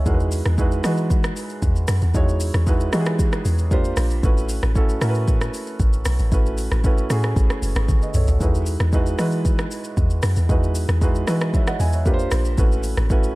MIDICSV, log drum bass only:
0, 0, Header, 1, 2, 480
1, 0, Start_track
1, 0, Key_signature, 4, "major"
1, 0, Tempo, 521739
1, 54, Time_signature, 4, 2, 24, 8
1, 12283, End_track
2, 0, Start_track
2, 0, Title_t, "Log drum bass"
2, 0, Program_c, 0, 39
2, 55, Note_on_c, 0, 40, 114
2, 392, Note_off_c, 0, 40, 0
2, 423, Note_on_c, 0, 40, 102
2, 750, Note_off_c, 0, 40, 0
2, 778, Note_on_c, 0, 52, 99
2, 1221, Note_off_c, 0, 52, 0
2, 1494, Note_on_c, 0, 40, 98
2, 1717, Note_off_c, 0, 40, 0
2, 1736, Note_on_c, 0, 42, 95
2, 1851, Note_off_c, 0, 42, 0
2, 1861, Note_on_c, 0, 40, 85
2, 1967, Note_off_c, 0, 40, 0
2, 1975, Note_on_c, 0, 40, 112
2, 2312, Note_off_c, 0, 40, 0
2, 2341, Note_on_c, 0, 40, 105
2, 2669, Note_off_c, 0, 40, 0
2, 2698, Note_on_c, 0, 52, 103
2, 3141, Note_off_c, 0, 52, 0
2, 3177, Note_on_c, 0, 40, 97
2, 3620, Note_off_c, 0, 40, 0
2, 3654, Note_on_c, 0, 34, 96
2, 3876, Note_off_c, 0, 34, 0
2, 3895, Note_on_c, 0, 33, 115
2, 4232, Note_off_c, 0, 33, 0
2, 4260, Note_on_c, 0, 33, 101
2, 4589, Note_off_c, 0, 33, 0
2, 4614, Note_on_c, 0, 45, 100
2, 5059, Note_off_c, 0, 45, 0
2, 5333, Note_on_c, 0, 33, 105
2, 5556, Note_off_c, 0, 33, 0
2, 5574, Note_on_c, 0, 35, 88
2, 5690, Note_off_c, 0, 35, 0
2, 5700, Note_on_c, 0, 33, 87
2, 5806, Note_off_c, 0, 33, 0
2, 5813, Note_on_c, 0, 33, 109
2, 6151, Note_off_c, 0, 33, 0
2, 6180, Note_on_c, 0, 33, 101
2, 6508, Note_off_c, 0, 33, 0
2, 6535, Note_on_c, 0, 45, 101
2, 6757, Note_off_c, 0, 45, 0
2, 6775, Note_on_c, 0, 33, 119
2, 6890, Note_off_c, 0, 33, 0
2, 7013, Note_on_c, 0, 30, 88
2, 7129, Note_off_c, 0, 30, 0
2, 7137, Note_on_c, 0, 32, 102
2, 7244, Note_off_c, 0, 32, 0
2, 7254, Note_on_c, 0, 33, 90
2, 7370, Note_off_c, 0, 33, 0
2, 7492, Note_on_c, 0, 35, 99
2, 7609, Note_off_c, 0, 35, 0
2, 7617, Note_on_c, 0, 33, 92
2, 7724, Note_off_c, 0, 33, 0
2, 7734, Note_on_c, 0, 40, 111
2, 8072, Note_off_c, 0, 40, 0
2, 8099, Note_on_c, 0, 40, 105
2, 8428, Note_off_c, 0, 40, 0
2, 8453, Note_on_c, 0, 52, 99
2, 8898, Note_off_c, 0, 52, 0
2, 9175, Note_on_c, 0, 40, 97
2, 9397, Note_off_c, 0, 40, 0
2, 9414, Note_on_c, 0, 42, 96
2, 9530, Note_off_c, 0, 42, 0
2, 9538, Note_on_c, 0, 40, 87
2, 9645, Note_off_c, 0, 40, 0
2, 9654, Note_on_c, 0, 40, 118
2, 9992, Note_off_c, 0, 40, 0
2, 10016, Note_on_c, 0, 40, 108
2, 10346, Note_off_c, 0, 40, 0
2, 10373, Note_on_c, 0, 52, 99
2, 10818, Note_off_c, 0, 52, 0
2, 10854, Note_on_c, 0, 40, 97
2, 11299, Note_off_c, 0, 40, 0
2, 11334, Note_on_c, 0, 34, 93
2, 11556, Note_off_c, 0, 34, 0
2, 11574, Note_on_c, 0, 33, 115
2, 11912, Note_off_c, 0, 33, 0
2, 11937, Note_on_c, 0, 33, 105
2, 12267, Note_off_c, 0, 33, 0
2, 12283, End_track
0, 0, End_of_file